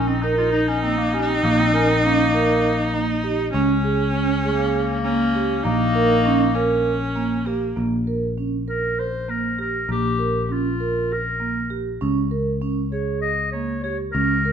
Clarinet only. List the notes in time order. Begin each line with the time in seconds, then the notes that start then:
0.07 C4
0.21 D#4
0.37 F4
0.52 D#4
0.68 C#4
0.82 C4
0.98 A#3
1.13 C#4
1.29 C4
1.44 A#3
1.59 C4
1.74 C#4
1.89 C4
2.04 A#3
4.45 A#3
5.66 A#3
8.69 A#4
8.99 C5
9.30 A#4
9.60 A#4
9.91 G4
10.44 G4
10.53 F4
11.13 A#4
12.92 C#5
13.21 D#5
13.52 C#5
13.84 C#5
14.12 A#4